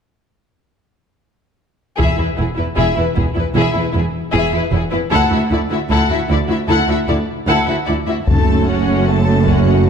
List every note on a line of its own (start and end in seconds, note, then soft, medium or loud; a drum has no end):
1.96 2.07 E1 soft
1.96 2.07 E2 soft
1.96 2.17 E4 soft
1.96 2.16 G#4 soft
1.96 2.18 E5 soft
1.96 taiko soft
2.18 2.26 E2 soft
2.18 2.26 E4 soft
2.18 2.27 B4 soft
2.37 2.46 E1 soft
2.37 2.46 E2 soft
2.37 2.45 B3 soft
2.37 2.45 E4 soft
2.37 2.48 G#4 soft
2.56 2.66 E2 soft
2.56 2.64 E4 soft
2.56 2.65 E4 soft
2.56 2.66 B4 soft
2.75 2.86 E1 soft
2.75 2.85 E2 soft
2.75 2.95 E4 soft
2.75 2.95 G#4 soft
2.75 2.96 E5 soft
2.96 3.04 E2 soft
2.96 3.04 E4 soft
2.96 3.05 E4 soft
2.96 3.07 B4 soft
3.15 3.25 E1 soft
3.15 3.24 E2 soft
3.15 3.23 B3 soft
3.15 3.24 E4 soft
3.15 3.26 G#4 soft
3.15 taiko soft
3.35 3.44 E2 soft
3.35 3.43 E4 soft
3.39 3.46 B4 soft
3.55 3.64 E1 medium
3.55 3.63 E2 medium
3.55 3.73 E4 medium
3.55 3.74 G#4 soft
3.59 3.76 E5 soft
3.73 3.83 E2 soft
3.73 3.81 E4 soft
3.73 3.82 E4 soft
3.80 3.87 B4 soft
3.93 4.03 E1 soft
3.93 4.03 E2 soft
3.93 4.01 B3 soft
3.93 4.01 E4 soft
3.98 4.05 G#4 soft
4.32 4.42 E1 medium
4.32 4.41 E2 medium
4.32 4.51 E4 medium
4.32 4.51 G#4 medium
4.38 4.54 E5 medium
4.53 4.61 E2 soft
4.53 4.61 E4 soft
4.53 4.63 B4 soft
4.71 4.81 E1 soft
4.71 4.81 E2 soft
4.71 4.79 B3 soft
4.71 4.79 E4 soft
4.76 4.83 G#4 soft
4.91 5.00 E2 soft
4.91 4.99 E4 soft
4.91 5.00 B4 soft
5.11 5.20 D2 medium
5.11 5.21 D2 medium
5.11 5.29 E4 medium
5.11 5.30 A4 medium
5.11 5.31 F#5 medium
5.30 5.39 D2 soft
5.30 5.38 E4 soft
5.30 5.39 F#4 soft
5.34 5.41 E5 soft
5.51 5.59 D2 soft
5.51 5.59 E4 soft
5.51 5.60 E4 soft
5.51 5.60 D5 soft
5.70 5.78 D2 soft
5.70 5.79 E4 soft
5.70 5.79 F#4 soft
5.70 5.80 E5 soft
5.89 5.97 D2 medium
5.89 5.99 D2 medium
5.89 6.08 E4 medium
5.89 6.08 A4 medium
5.89 6.10 F#5 medium
6.09 6.17 D2 soft
6.09 6.18 E4 soft
6.09 6.18 F#4 soft
6.09 6.20 E5 soft
6.29 6.37 D2 soft
6.29 6.38 D2 soft
6.29 6.38 E4 soft
6.29 6.39 D5 soft
6.48 6.57 D2 soft
6.48 6.57 E4 soft
6.48 6.56 F#4 soft
6.48 6.59 E5 soft
6.68 6.76 D2 medium
6.68 6.77 D2 medium
6.68 6.87 E4 medium
6.68 6.87 A4 medium
6.68 6.88 F#5 medium
6.88 6.96 D2 soft
6.88 6.96 E4 soft
6.88 6.96 F#4 soft
6.88 6.98 E5 soft
7.08 7.16 D2 soft
7.08 7.17 D2 soft
7.08 7.16 E4 soft
7.08 7.16 D5 soft
7.48 7.56 D2 medium
7.48 7.56 D2 soft
7.48 7.67 E4 medium
7.48 7.67 A4 medium
7.48 7.67 F#5 medium
7.67 7.76 D2 soft
7.67 7.76 E4 soft
7.67 7.78 F#4 soft
7.67 7.75 E5 soft
7.86 7.96 D2 soft
7.86 7.97 D2 soft
7.86 7.96 E4 soft
7.86 7.97 E4 soft
7.86 7.94 D5 soft
8.07 8.16 D2 soft
8.07 8.16 E4 soft
8.07 8.17 F#4 soft
8.07 8.15 E5 soft
8.26 9.89 F#1 soft
8.26 9.89 F#2 soft
8.26 9.43 F#2 medium
8.26 9.89 F#3 soft
8.26 9.89 A3 soft
8.26 8.65 A3 soft
8.26 9.89 C#4 soft
8.26 9.89 F#4 medium
8.26 8.66 A4 soft
8.26 8.65 A5 soft
8.26 taiko medium
8.67 9.07 C#4 soft
8.67 9.08 F#4 soft
8.67 9.08 F#5 soft
9.07 9.47 A3 soft
9.07 9.47 A4 soft
9.07 9.47 A5 soft
9.46 9.86 C#4 soft
9.46 9.86 F#4 soft
9.46 9.87 F#5 soft
9.46 taiko soft
9.85 9.89 A3 soft